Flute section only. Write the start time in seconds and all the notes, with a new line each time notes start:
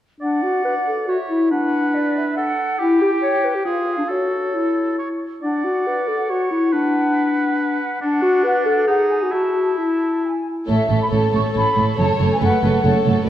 0.21 F#5
1.08 E5
1.51 F#5
1.94 D5
2.15 E5
2.36 F#5
2.79 G5
3.65 F5
4.10 C#5
5.42 F#5
6.72 F#5
7.60 F#5
8.02 F#5
8.44 F#5
8.87 F#5
9.10 G#5
9.32 A5
9.77 A5
10.23 G#5
10.67 E5
11.01 B5
11.12 A5
11.34 C#6
11.56 B5
11.99 A5
12.31 G#5
12.42 F#5